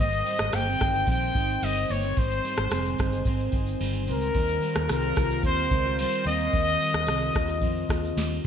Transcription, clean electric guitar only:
0, 0, Header, 1, 2, 480
1, 0, Start_track
1, 0, Key_signature, -3, "major"
1, 0, Tempo, 544959
1, 1911, Time_signature, 4, 2, 24, 8
1, 7459, End_track
2, 0, Start_track
2, 0, Title_t, "Clean electric guitar"
2, 0, Program_c, 0, 27
2, 0, Note_on_c, 0, 44, 90
2, 0, Note_on_c, 0, 55, 65
2, 0, Note_on_c, 0, 63, 66
2, 231, Note_off_c, 0, 55, 0
2, 234, Note_on_c, 0, 55, 62
2, 475, Note_on_c, 0, 58, 63
2, 590, Note_off_c, 0, 58, 0
2, 590, Note_on_c, 0, 60, 56
2, 704, Note_off_c, 0, 63, 0
2, 707, Note_on_c, 0, 63, 72
2, 941, Note_off_c, 0, 60, 0
2, 952, Note_on_c, 0, 60, 65
2, 1184, Note_off_c, 0, 63, 0
2, 1187, Note_on_c, 0, 63, 67
2, 1427, Note_off_c, 0, 55, 0
2, 1431, Note_on_c, 0, 55, 63
2, 1666, Note_off_c, 0, 60, 0
2, 1669, Note_on_c, 0, 58, 62
2, 1789, Note_off_c, 0, 58, 0
2, 1789, Note_on_c, 0, 60, 57
2, 1897, Note_off_c, 0, 44, 0
2, 1908, Note_on_c, 0, 44, 83
2, 2146, Note_off_c, 0, 55, 0
2, 2149, Note_on_c, 0, 55, 65
2, 2378, Note_off_c, 0, 60, 0
2, 2388, Note_on_c, 0, 60, 61
2, 2629, Note_off_c, 0, 63, 0
2, 2633, Note_on_c, 0, 63, 68
2, 2868, Note_off_c, 0, 60, 0
2, 2872, Note_on_c, 0, 60, 72
2, 3107, Note_off_c, 0, 63, 0
2, 3111, Note_on_c, 0, 63, 64
2, 3350, Note_off_c, 0, 55, 0
2, 3353, Note_on_c, 0, 55, 66
2, 3592, Note_off_c, 0, 60, 0
2, 3596, Note_on_c, 0, 60, 61
2, 3830, Note_off_c, 0, 44, 0
2, 3832, Note_on_c, 0, 51, 85
2, 4073, Note_off_c, 0, 55, 0
2, 4076, Note_on_c, 0, 55, 61
2, 4313, Note_off_c, 0, 60, 0
2, 4316, Note_on_c, 0, 60, 66
2, 4550, Note_off_c, 0, 63, 0
2, 4554, Note_on_c, 0, 65, 69
2, 4793, Note_off_c, 0, 60, 0
2, 4796, Note_on_c, 0, 60, 67
2, 5030, Note_off_c, 0, 65, 0
2, 5033, Note_on_c, 0, 63, 70
2, 5154, Note_off_c, 0, 63, 0
2, 5154, Note_on_c, 0, 65, 63
2, 5263, Note_off_c, 0, 55, 0
2, 5274, Note_on_c, 0, 55, 65
2, 5514, Note_off_c, 0, 60, 0
2, 5517, Note_on_c, 0, 60, 62
2, 5743, Note_off_c, 0, 51, 0
2, 5753, Note_on_c, 0, 51, 86
2, 5980, Note_off_c, 0, 55, 0
2, 5991, Note_on_c, 0, 55, 64
2, 6232, Note_off_c, 0, 60, 0
2, 6235, Note_on_c, 0, 60, 65
2, 6463, Note_off_c, 0, 65, 0
2, 6473, Note_on_c, 0, 65, 66
2, 6709, Note_off_c, 0, 60, 0
2, 6712, Note_on_c, 0, 60, 66
2, 6947, Note_off_c, 0, 65, 0
2, 6951, Note_on_c, 0, 65, 67
2, 7183, Note_off_c, 0, 55, 0
2, 7194, Note_on_c, 0, 55, 66
2, 7431, Note_off_c, 0, 60, 0
2, 7459, Note_off_c, 0, 51, 0
2, 7459, Note_off_c, 0, 55, 0
2, 7459, Note_off_c, 0, 65, 0
2, 7459, End_track
0, 0, End_of_file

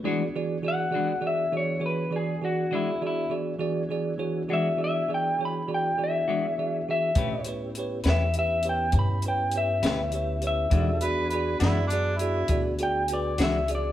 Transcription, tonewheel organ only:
0, 0, Header, 1, 2, 480
1, 0, Start_track
1, 0, Tempo, 593472
1, 27, Time_signature, 12, 3, 24, 8
1, 11260, End_track
2, 0, Start_track
2, 0, Title_t, "Tonewheel organ"
2, 0, Program_c, 0, 16
2, 22, Note_on_c, 0, 62, 55
2, 23, Note_on_c, 0, 66, 57
2, 24, Note_on_c, 0, 52, 53
2, 27, Note_on_c, 0, 59, 54
2, 28, Note_on_c, 0, 68, 54
2, 2880, Note_off_c, 0, 62, 0
2, 2880, Note_off_c, 0, 66, 0
2, 2881, Note_off_c, 0, 52, 0
2, 2882, Note_off_c, 0, 59, 0
2, 2883, Note_off_c, 0, 68, 0
2, 2902, Note_on_c, 0, 66, 53
2, 2903, Note_on_c, 0, 59, 55
2, 2905, Note_on_c, 0, 68, 54
2, 2906, Note_on_c, 0, 62, 57
2, 2908, Note_on_c, 0, 64, 50
2, 5757, Note_off_c, 0, 59, 0
2, 5757, Note_off_c, 0, 66, 0
2, 5758, Note_off_c, 0, 68, 0
2, 5759, Note_off_c, 0, 62, 0
2, 5759, Note_off_c, 0, 64, 0
2, 5797, Note_on_c, 0, 68, 50
2, 5800, Note_on_c, 0, 62, 50
2, 5802, Note_on_c, 0, 60, 47
2, 5805, Note_on_c, 0, 65, 48
2, 6033, Note_off_c, 0, 68, 0
2, 6035, Note_off_c, 0, 62, 0
2, 6036, Note_off_c, 0, 60, 0
2, 6037, Note_off_c, 0, 65, 0
2, 6040, Note_on_c, 0, 64, 54
2, 6041, Note_on_c, 0, 67, 54
2, 6043, Note_on_c, 0, 59, 56
2, 6043, Note_on_c, 0, 61, 57
2, 8645, Note_off_c, 0, 64, 0
2, 8646, Note_off_c, 0, 67, 0
2, 8647, Note_off_c, 0, 59, 0
2, 8647, Note_off_c, 0, 61, 0
2, 8670, Note_on_c, 0, 69, 49
2, 8673, Note_on_c, 0, 60, 47
2, 8674, Note_on_c, 0, 63, 53
2, 8675, Note_on_c, 0, 67, 51
2, 8908, Note_off_c, 0, 69, 0
2, 8910, Note_off_c, 0, 60, 0
2, 8910, Note_off_c, 0, 63, 0
2, 8910, Note_off_c, 0, 67, 0
2, 8912, Note_on_c, 0, 62, 53
2, 8913, Note_on_c, 0, 66, 53
2, 8916, Note_on_c, 0, 59, 56
2, 8919, Note_on_c, 0, 68, 56
2, 11260, Note_off_c, 0, 59, 0
2, 11260, Note_off_c, 0, 62, 0
2, 11260, Note_off_c, 0, 66, 0
2, 11260, Note_off_c, 0, 68, 0
2, 11260, End_track
0, 0, End_of_file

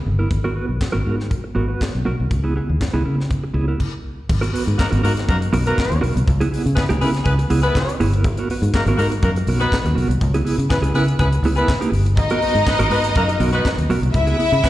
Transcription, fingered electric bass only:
0, 0, Header, 1, 2, 480
1, 0, Start_track
1, 0, Key_signature, 5, "minor"
1, 0, Tempo, 497512
1, 299, Time_signature, 4, 2, 24, 8
1, 5098, Tempo, 491803
1, 14283, End_track
2, 0, Start_track
2, 0, Title_t, "Fingered electric bass"
2, 0, Program_c, 0, 33
2, 58, Note_on_c, 0, 31, 87
2, 238, Note_off_c, 0, 31, 0
2, 299, Note_on_c, 0, 32, 101
2, 574, Note_off_c, 0, 32, 0
2, 664, Note_on_c, 0, 35, 71
2, 750, Note_off_c, 0, 35, 0
2, 913, Note_on_c, 0, 32, 94
2, 996, Note_off_c, 0, 32, 0
2, 1025, Note_on_c, 0, 44, 94
2, 1299, Note_off_c, 0, 44, 0
2, 1502, Note_on_c, 0, 32, 88
2, 1682, Note_off_c, 0, 32, 0
2, 1880, Note_on_c, 0, 35, 75
2, 1962, Note_off_c, 0, 35, 0
2, 1994, Note_on_c, 0, 35, 75
2, 2086, Note_off_c, 0, 35, 0
2, 2120, Note_on_c, 0, 36, 78
2, 2202, Note_off_c, 0, 36, 0
2, 2229, Note_on_c, 0, 37, 91
2, 2502, Note_off_c, 0, 37, 0
2, 2599, Note_on_c, 0, 39, 80
2, 2681, Note_off_c, 0, 39, 0
2, 2837, Note_on_c, 0, 37, 99
2, 2920, Note_off_c, 0, 37, 0
2, 2946, Note_on_c, 0, 49, 79
2, 3220, Note_off_c, 0, 49, 0
2, 3416, Note_on_c, 0, 37, 98
2, 3599, Note_off_c, 0, 37, 0
2, 4147, Note_on_c, 0, 32, 104
2, 4324, Note_off_c, 0, 32, 0
2, 4507, Note_on_c, 0, 44, 97
2, 4592, Note_off_c, 0, 44, 0
2, 4750, Note_on_c, 0, 32, 106
2, 4833, Note_off_c, 0, 32, 0
2, 4854, Note_on_c, 0, 44, 98
2, 5034, Note_off_c, 0, 44, 0
2, 5100, Note_on_c, 0, 42, 91
2, 5279, Note_off_c, 0, 42, 0
2, 5338, Note_on_c, 0, 35, 100
2, 5518, Note_off_c, 0, 35, 0
2, 5707, Note_on_c, 0, 39, 89
2, 5792, Note_off_c, 0, 39, 0
2, 5818, Note_on_c, 0, 35, 80
2, 5914, Note_off_c, 0, 35, 0
2, 5949, Note_on_c, 0, 36, 87
2, 6033, Note_off_c, 0, 36, 0
2, 6065, Note_on_c, 0, 37, 106
2, 6243, Note_off_c, 0, 37, 0
2, 6438, Note_on_c, 0, 49, 114
2, 6519, Note_off_c, 0, 49, 0
2, 6680, Note_on_c, 0, 37, 110
2, 6761, Note_off_c, 0, 37, 0
2, 6795, Note_on_c, 0, 49, 105
2, 6970, Note_off_c, 0, 49, 0
2, 7027, Note_on_c, 0, 37, 98
2, 7205, Note_off_c, 0, 37, 0
2, 7266, Note_on_c, 0, 37, 101
2, 7444, Note_off_c, 0, 37, 0
2, 7752, Note_on_c, 0, 31, 90
2, 7984, Note_off_c, 0, 31, 0
2, 7984, Note_on_c, 0, 32, 114
2, 8163, Note_off_c, 0, 32, 0
2, 8353, Note_on_c, 0, 44, 106
2, 8437, Note_off_c, 0, 44, 0
2, 8588, Note_on_c, 0, 32, 114
2, 8674, Note_off_c, 0, 32, 0
2, 8702, Note_on_c, 0, 44, 108
2, 8882, Note_off_c, 0, 44, 0
2, 8946, Note_on_c, 0, 42, 98
2, 9125, Note_off_c, 0, 42, 0
2, 9183, Note_on_c, 0, 35, 105
2, 9363, Note_off_c, 0, 35, 0
2, 9550, Note_on_c, 0, 39, 80
2, 9635, Note_off_c, 0, 39, 0
2, 9665, Note_on_c, 0, 35, 85
2, 9760, Note_off_c, 0, 35, 0
2, 9785, Note_on_c, 0, 36, 89
2, 9872, Note_off_c, 0, 36, 0
2, 9911, Note_on_c, 0, 37, 123
2, 10088, Note_off_c, 0, 37, 0
2, 10267, Note_on_c, 0, 49, 106
2, 10353, Note_off_c, 0, 49, 0
2, 10497, Note_on_c, 0, 37, 107
2, 10587, Note_off_c, 0, 37, 0
2, 10616, Note_on_c, 0, 49, 95
2, 10798, Note_off_c, 0, 49, 0
2, 10871, Note_on_c, 0, 37, 106
2, 11048, Note_off_c, 0, 37, 0
2, 11092, Note_on_c, 0, 37, 95
2, 11276, Note_off_c, 0, 37, 0
2, 11570, Note_on_c, 0, 31, 91
2, 11825, Note_off_c, 0, 31, 0
2, 11825, Note_on_c, 0, 32, 114
2, 12004, Note_off_c, 0, 32, 0
2, 12188, Note_on_c, 0, 44, 90
2, 12273, Note_off_c, 0, 44, 0
2, 12428, Note_on_c, 0, 32, 115
2, 12513, Note_off_c, 0, 32, 0
2, 12528, Note_on_c, 0, 44, 102
2, 12713, Note_off_c, 0, 44, 0
2, 12783, Note_on_c, 0, 42, 92
2, 12962, Note_off_c, 0, 42, 0
2, 13022, Note_on_c, 0, 35, 109
2, 13201, Note_off_c, 0, 35, 0
2, 13386, Note_on_c, 0, 39, 79
2, 13472, Note_off_c, 0, 39, 0
2, 13499, Note_on_c, 0, 35, 81
2, 13596, Note_off_c, 0, 35, 0
2, 13623, Note_on_c, 0, 36, 93
2, 13710, Note_off_c, 0, 36, 0
2, 13745, Note_on_c, 0, 37, 119
2, 13923, Note_off_c, 0, 37, 0
2, 14114, Note_on_c, 0, 49, 116
2, 14196, Note_off_c, 0, 49, 0
2, 14283, End_track
0, 0, End_of_file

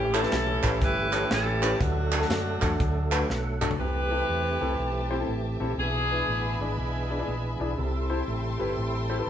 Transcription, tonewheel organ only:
0, 0, Header, 1, 2, 480
1, 0, Start_track
1, 0, Tempo, 497100
1, 1744, Time_signature, 4, 2, 24, 8
1, 8977, End_track
2, 0, Start_track
2, 0, Title_t, "Tonewheel organ"
2, 0, Program_c, 0, 16
2, 0, Note_on_c, 0, 52, 69
2, 0, Note_on_c, 0, 57, 60
2, 0, Note_on_c, 0, 61, 61
2, 0, Note_on_c, 0, 67, 76
2, 1706, Note_off_c, 0, 52, 0
2, 1706, Note_off_c, 0, 57, 0
2, 1707, Note_off_c, 0, 61, 0
2, 1708, Note_off_c, 0, 67, 0
2, 1741, Note_on_c, 0, 69, 74
2, 1743, Note_on_c, 0, 54, 64
2, 1743, Note_on_c, 0, 62, 58
2, 1744, Note_on_c, 0, 57, 63
2, 3009, Note_on_c, 0, 79, 73
2, 3168, Note_off_c, 0, 79, 0
2, 3180, Note_on_c, 0, 78, 68
2, 3468, Note_off_c, 0, 78, 0
2, 3491, Note_on_c, 0, 74, 62
2, 3621, Note_off_c, 0, 69, 0
2, 3622, Note_off_c, 0, 54, 0
2, 3622, Note_off_c, 0, 62, 0
2, 3623, Note_off_c, 0, 57, 0
2, 3649, Note_off_c, 0, 74, 0
2, 3663, Note_on_c, 0, 67, 63
2, 3664, Note_on_c, 0, 60, 51
2, 3666, Note_on_c, 0, 57, 52
2, 3667, Note_on_c, 0, 52, 58
2, 5546, Note_off_c, 0, 60, 0
2, 5546, Note_off_c, 0, 67, 0
2, 5547, Note_off_c, 0, 52, 0
2, 5547, Note_off_c, 0, 57, 0
2, 5580, Note_on_c, 0, 52, 55
2, 5580, Note_on_c, 0, 62, 52
2, 5585, Note_on_c, 0, 68, 62
2, 5586, Note_on_c, 0, 59, 49
2, 7468, Note_off_c, 0, 52, 0
2, 7468, Note_off_c, 0, 62, 0
2, 7470, Note_off_c, 0, 68, 0
2, 7471, Note_off_c, 0, 59, 0
2, 7504, Note_on_c, 0, 69, 79
2, 7507, Note_on_c, 0, 55, 67
2, 7508, Note_on_c, 0, 60, 64
2, 7510, Note_on_c, 0, 64, 59
2, 8781, Note_on_c, 0, 72, 53
2, 8944, Note_off_c, 0, 72, 0
2, 8977, Note_off_c, 0, 55, 0
2, 8977, Note_off_c, 0, 60, 0
2, 8977, Note_off_c, 0, 64, 0
2, 8977, Note_off_c, 0, 69, 0
2, 8977, End_track
0, 0, End_of_file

